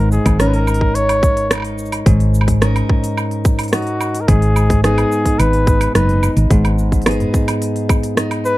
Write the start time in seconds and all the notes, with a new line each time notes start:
Already playing: G#1 G#2 D#4 A#4
0.12 G#4, shaker
0.26 G#1, kick, cross-stick, open hi-hat, low woodblock, shaker
0.39 C#4 D#4 A#4, cross-stick, open hi-hat, shaker
0.47 B4
0.54 A#4, open hi-hat
0.67 low woodblock, shaker
0.74 open hi-hat
0.81 kick
0.95 C#5, open hi-hat, shaker
1.09 open hi-hat, low woodblock
1.23 kick, shaker
1.37 open hi-hat
1.50 D#4, cross-stick, open hi-hat, low woodblock, shaker
1.53 low woodblock
1.55 low woodblock
1.58 low woodblock
1.60 low woodblock
1.62 open hi-hat, low woodblock
1.78 shaker
1.86 shaker
1.92 open hi-hat, low woodblock
2.06 G#1 G#2, kick, open hi-hat, shaker
2.20 open hi-hat
2.34 shaker
2.41 low woodblock
2.48 kick, open hi-hat, shaker
2.61 C#4 D#4 A#4, cross-stick, open hi-hat, shaker
2.76 open hi-hat, low woodblock
2.89 kick, cross-stick
3.04 open hi-hat, shaker
3.17 low woodblock, shaker
3.31 open hi-hat
3.45 kick, shaker
3.59 open hi-hat, low woodblock, shaker
3.63 open hi-hat
3.68 open hi-hat
3.72 D#4 F#4, cross-stick, open hi-hat, shaker
3.82 open hi-hat
3.87 open hi-hat
4.01 low woodblock, shaker
4.15 open hi-hat, shaker
4.21 A#4
4.28 G#1 G#2 G#4, kick, open hi-hat, shaker
4.42 open hi-hat
4.56 low woodblock, shaker
4.70 kick, cross-stick, open hi-hat, shaker
4.83 B3 D#4 G#4, cross-stick, open hi-hat, shaker
4.98 open hi-hat, low woodblock
5.12 shaker
5.25 kick, open hi-hat, shaker
5.39 G#1 B4, open hi-hat, low woodblock, shaker
5.53 open hi-hat
5.67 kick, shaker
5.81 open hi-hat, low woodblock, shaker
5.95 F#1 D#4 B4, cross-stick, open hi-hat, shaker
6.09 open hi-hat
6.23 low woodblock, shaker
6.36 G#1, open hi-hat, shaker
6.50 G#1 G#2, kick, open hi-hat, shaker
6.65 open hi-hat, low woodblock
6.79 shaker
6.92 kick, open hi-hat, shaker
7.02 open hi-hat
7.06 B3 D#4 G#4, cross-stick, open hi-hat, low woodblock, shaker
7.11 open hi-hat
7.20 open hi-hat
7.34 kick, cross-stick, shaker
7.48 open hi-hat, low woodblock, shaker
7.62 open hi-hat, shaker
7.76 open hi-hat
7.89 kick, low woodblock, shaker
8.03 open hi-hat, shaker
8.17 D#4, cross-stick, open hi-hat, shaker
8.31 open hi-hat, low woodblock
8.45 B4, shaker